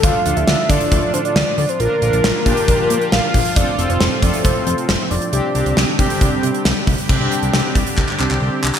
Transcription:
0.00 0.12 D2 loud
0.00 1.78 A2 medium
0.00 1.76 D3 medium
0.00 5.29 F3 medium
0.00 0.19 D4 medium
0.00 1.78 D4 medium
0.00 0.19 F4 medium
0.00 1.78 F4 medium
0.00 0.19 A4 medium
0.00 0.38 F5 loud
0.00 kick loud
0.00 closed hi-hat medium
0.26 0.34 D2 medium
0.26 0.57 D4 medium
0.26 0.57 F4 medium
0.26 0.57 A4 medium
0.26 closed hi-hat medium
0.36 0.45 D2 loud
0.36 0.71 E5 loud
0.36 closed hi-hat medium
0.48 0.56 D2 loud
0.48 snare loud
0.70 0.78 D3 medium
0.70 1.33 D4 medium
0.70 1.34 F4 medium
0.70 1.33 A4 medium
0.70 1.13 D5 loud
0.70 kick medium
0.70 closed hi-hat medium
0.81 closed hi-hat medium
0.92 1.00 D2 loud
0.92 kick medium
0.92 closed hi-hat medium
1.14 1.22 D3 medium
1.14 1.19 C5 loud
1.14 closed hi-hat medium
1.25 1.56 D5 loud
1.25 closed hi-hat medium
1.36 1.44 D2 loud
1.36 snare loud
1.58 1.66 D2 loud
1.58 1.70 D5 loud
1.58 open hi-hat medium
1.69 1.81 C5 medium
1.69 closed hi-hat medium
1.80 1.88 A#1 loud
1.80 3.55 A#2 medium
1.80 3.55 D3 medium
1.80 1.96 D4 medium
1.80 3.55 D4 medium
1.80 1.96 F4 medium
1.80 5.29 F4 medium
1.80 1.96 A#4 medium
1.80 3.12 A#4 loud
1.80 closed hi-hat medium
2.02 2.10 A#1 loud
2.02 2.34 D4 medium
2.02 2.34 F4 medium
2.02 2.34 A#4 medium
2.02 closed hi-hat medium
2.13 2.21 A#1 loud
2.13 closed hi-hat medium
2.24 2.32 A#1 medium
2.24 snare loud
2.46 2.54 A#2 loud
2.46 3.10 D4 medium
2.46 3.10 F4 medium
2.46 3.10 G4 loud
2.46 kick medium
2.46 closed hi-hat medium
2.57 closed hi-hat medium
2.68 2.76 A#1 loud
2.68 kick loud
2.68 closed hi-hat medium
2.90 2.98 A#2 medium
2.90 closed hi-hat medium
3.01 closed hi-hat medium
3.12 3.20 A#1 loud
3.12 3.58 F5 loud
3.12 snare loud
3.34 3.42 A#1 loud
3.34 kick medium
3.34 open hi-hat medium
3.45 closed hi-hat medium
3.56 3.65 F1 loud
3.56 5.31 A2 medium
3.56 5.31 C3 medium
3.56 3.72 C4 medium
3.56 5.31 C4 medium
3.56 3.72 F4 medium
3.56 3.72 A4 medium
3.56 3.91 D5 loud
3.56 kick loud
3.56 closed hi-hat medium
3.78 3.87 F1 medium
3.78 4.10 C4 medium
3.78 4.10 F4 medium
3.78 4.10 A4 medium
3.78 closed hi-hat medium
3.89 3.98 F1 medium
3.89 4.24 C5 medium
3.89 closed hi-hat medium
4.01 4.09 F1 loud
4.01 snare loud
4.22 4.31 F2 loud
4.22 4.86 C4 medium
4.22 4.86 F4 medium
4.22 4.86 A4 medium
4.22 4.46 D5 medium
4.22 kick medium
4.22 closed hi-hat medium
4.34 closed hi-hat medium
4.45 4.53 F1 loud
4.45 5.10 C5 loud
4.45 kick loud
4.45 closed hi-hat medium
4.67 4.75 F2 loud
4.67 closed hi-hat medium
4.78 closed hi-hat medium
4.89 4.97 F1 loud
4.89 snare loud
5.11 5.19 F1 loud
5.11 5.73 D5 medium
5.11 open hi-hat medium
5.22 closed hi-hat medium
5.33 5.41 C2 loud
5.33 7.08 C3 medium
5.33 7.08 D3 medium
5.33 7.08 G3 medium
5.33 5.49 C4 medium
5.33 5.49 D4 medium
5.33 7.08 D4 medium
5.33 5.49 G4 medium
5.33 7.08 G4 medium
5.33 closed hi-hat medium
5.55 5.63 C2 loud
5.55 5.87 C4 medium
5.55 5.87 D4 medium
5.55 5.87 G4 medium
5.55 closed hi-hat medium
5.66 5.74 C2 medium
5.66 closed hi-hat medium
5.77 5.85 C2 loud
5.77 snare loud
5.99 6.07 C3 medium
5.99 6.63 C4 medium
5.99 6.63 D4 medium
5.99 6.63 G4 loud
5.99 kick medium
5.99 closed hi-hat medium
6.10 closed hi-hat medium
6.21 6.29 C2 loud
6.21 kick loud
6.21 closed hi-hat medium
6.43 6.51 C3 loud
6.43 closed hi-hat medium
6.54 closed hi-hat soft
6.65 6.73 C2 loud
6.65 snare loud
6.87 6.95 C2 medium
6.87 kick medium
6.87 open hi-hat medium
6.98 closed hi-hat medium
7.09 7.17 C2 loud
7.09 8.79 C3 medium
7.09 8.79 D3 medium
7.09 8.79 G3 medium
7.09 7.73 C4 medium
7.09 7.73 D4 medium
7.09 8.79 D4 medium
7.09 7.73 G4 loud
7.09 8.79 G4 medium
7.09 kick loud
7.09 crash medium
7.20 7.28 C2 medium
7.32 closed hi-hat medium
7.42 7.51 C2 medium
7.42 closed hi-hat medium
7.53 7.62 C2 loud
7.53 snare loud
7.75 7.84 C2 medium
7.75 kick medium
7.75 closed hi-hat medium
7.87 closed hi-hat medium
7.98 8.06 C2 loud
7.98 kick medium
7.98 clap medium
8.09 clap medium
8.20 8.28 C2 loud
8.20 8.68 C4 medium
8.20 8.68 D4 medium
8.20 8.68 G4 medium
8.20 clap medium
8.31 8.39 C2 loud
8.31 clap medium
8.42 8.50 C2 loud
8.64 8.72 C2 loud
8.64 clap medium
8.75 clap medium

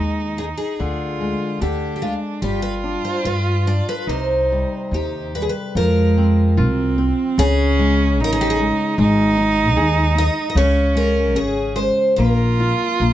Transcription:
0.00 0.51 D#2 medium
0.00 0.38 G#3 soft
0.00 0.81 D#4 medium
0.38 0.79 D#4 soft
0.38 0.44 G#4 medium
0.58 1.61 G#4 medium
0.80 1.33 D2 medium
0.80 1.61 D3 medium
0.80 1.62 F4 medium
1.21 1.60 G#3 soft
1.61 2.14 D2 medium
1.61 2.01 D3 soft
1.61 2.43 D4 medium
1.61 1.95 G4 medium
1.96 2.02 G4 soft
2.02 2.41 G#3 soft
2.02 2.13 F4 medium
2.42 2.96 G1 medium
2.42 4.04 G3 medium
2.42 4.09 F4 loud
2.42 2.62 G4 medium
2.62 2.74 B4 medium
2.84 3.24 D4 soft
3.05 3.25 C5 medium
3.25 3.79 G2 medium
3.25 3.65 F4 soft
3.25 3.67 B4 medium
3.67 4.07 D4 soft
3.67 3.86 D5 medium
3.89 4.09 B4 medium
4.07 4.62 C2 medium
4.07 5.72 C3 medium
4.07 5.34 D#4 medium
4.07 5.31 C5 medium
4.52 4.92 G3 soft
4.91 5.46 D#2 medium
4.91 5.33 D#4 soft
4.91 5.36 G4 medium
5.35 5.76 G3 soft
5.35 5.42 B4 medium
5.42 5.49 G#4 medium
5.49 5.77 B4 medium
5.75 6.59 F2 medium
5.75 7.35 F3 medium
5.75 6.59 G#3 medium
5.75 6.94 A#4 medium
6.18 6.56 C4 soft
6.57 7.10 C2 medium
6.57 7.41 C4 medium
6.57 6.97 F4 soft
6.98 7.37 C4 soft
7.38 8.19 C#2 medium
7.38 8.95 C#3 medium
7.38 8.22 C#4 loud
7.38 8.20 G#4 loud
7.79 8.18 G#3 medium
8.19 8.70 A1 medium
8.19 8.58 D#4 medium
8.19 8.99 D#4 loud
8.24 8.32 A#4 medium
8.33 8.41 G#4 loud
8.41 8.50 G4 medium
8.50 8.59 G#4 medium
8.60 8.98 G#3 soft
8.98 9.76 G#1 medium
8.98 10.52 G#3 medium
8.98 10.59 D#4 loud
9.37 9.75 D#4 medium
9.76 10.28 D#2 medium
9.76 10.15 G#4 medium
10.15 10.54 D#4 soft
10.15 10.48 D#5 loud
10.50 10.56 D#5 medium
10.55 11.36 C#2 medium
10.55 12.13 C#3 medium
10.55 11.77 C#4 medium
10.55 10.96 C#5 medium
10.95 11.34 G#3 soft
10.95 11.37 A#4 medium
11.36 11.89 G#1 medium
11.36 11.75 C#4 soft
11.36 11.77 G#4 medium
11.76 12.16 G#3 soft
11.76 12.16 C5 medium
12.16 12.71 A#1 medium
12.16 13.00 A#3 medium
12.16 13.13 F4 loud
12.16 13.13 A#4 medium
12.60 12.99 F4 soft
13.00 13.13 A#1 medium
13.00 13.13 A#3 soft

